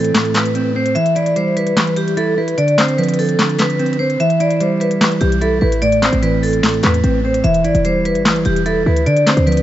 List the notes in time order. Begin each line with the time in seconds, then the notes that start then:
Already playing: A2 E3 C4 A4
0.04 closed hi-hat
0.15 A2, snare, clap, closed hi-hat
0.25 closed hi-hat
0.34 B4, snare, clap, closed hi-hat
0.46 closed hi-hat
0.55 C4, closed hi-hat
0.75 C4 C5
0.86 closed hi-hat
0.95 E3 E5, closed hi-hat
1.06 closed hi-hat
1.15 E4 D5, closed hi-hat
1.26 closed hi-hat
1.36 G3 C5, closed hi-hat
1.57 B4, closed hi-hat
1.67 closed hi-hat
1.77 E3, snare, clap, closed hi-hat
1.87 closed hi-hat
1.96 G4, closed hi-hat
2.08 closed hi-hat
2.17 E4 A4, closed hi-hat
2.38 E4 B4
2.48 closed hi-hat
2.58 D3 D5, closed hi-hat
2.68 closed hi-hat
2.78 C4 C5, snare, clap, closed hi-hat
2.88 closed hi-hat
2.98 F3 B4, closed hi-hat
3.03 closed hi-hat
3.09 closed hi-hat
3.14 closed hi-hat
3.19 A4, open hi-hat
3.29 closed hi-hat
3.39 D3, snare, clap, closed hi-hat
3.49 closed hi-hat
3.59 B4, snare, clap, closed hi-hat
3.70 closed hi-hat
3.79 C4, closed hi-hat
3.86 closed hi-hat
3.93 closed hi-hat
3.99 C4 C5
4.10 closed hi-hat
4.20 E3 E5, closed hi-hat
4.30 closed hi-hat
4.40 E4 D5, closed hi-hat
4.50 closed hi-hat
4.60 G3 C5, closed hi-hat
4.80 B4, closed hi-hat
4.91 closed hi-hat
5.01 E3, snare, clap, closed hi-hat
5.12 closed hi-hat
5.21 B1 G4, closed hi-hat
5.32 closed hi-hat
5.41 E4 A4, closed hi-hat
5.61 A1 E4 B4
5.72 closed hi-hat
5.82 A2 D5, closed hi-hat
5.92 closed hi-hat
6.02 C4 C5, snare, clap, closed hi-hat
6.13 A1, closed hi-hat
6.23 E3 B4, closed hi-hat
6.43 A4, open hi-hat
6.53 closed hi-hat
6.63 A2, snare, clap, closed hi-hat
6.74 closed hi-hat
6.83 E2 B4, snare, clap, closed hi-hat
6.94 closed hi-hat
7.04 A1 C4, closed hi-hat
7.24 C4 C5
7.34 closed hi-hat
7.44 E1 E3 E5, closed hi-hat
7.54 closed hi-hat
7.64 G1 E4 D5, closed hi-hat
7.75 E1, closed hi-hat
7.85 G3 C5, closed hi-hat
8.05 B4, closed hi-hat
8.15 G1, closed hi-hat
8.25 E3, snare, clap, closed hi-hat
8.36 closed hi-hat
8.45 E1 G4, closed hi-hat
8.56 closed hi-hat
8.66 E4 A4, closed hi-hat
8.86 D2 E4 B4
8.96 closed hi-hat
9.06 D3 D5, closed hi-hat
9.17 closed hi-hat
9.27 C4 C5, snare, clap, closed hi-hat
9.37 D2, closed hi-hat
9.47 F3 B4, closed hi-hat
9.52 closed hi-hat
9.57 closed hi-hat